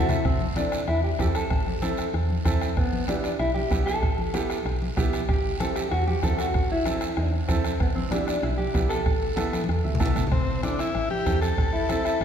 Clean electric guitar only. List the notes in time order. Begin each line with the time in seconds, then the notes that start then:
0.09 E4
0.25 C4
0.56 D4
0.88 E4
1.04 G4
1.20 G4
1.36 A4
2.78 B3
3.08 D4
3.24 D4
3.40 E4
3.54 G4
3.86 A4
5.29 G4
5.60 A4
5.76 G4
5.91 F#4
6.08 G4
6.24 A4
6.40 F#4
6.72 E4
7.80 B3
7.95 C4
8.11 D4
8.27 D4
8.42 E4
8.58 G4
8.89 A4
11.73 E4
12.05 E4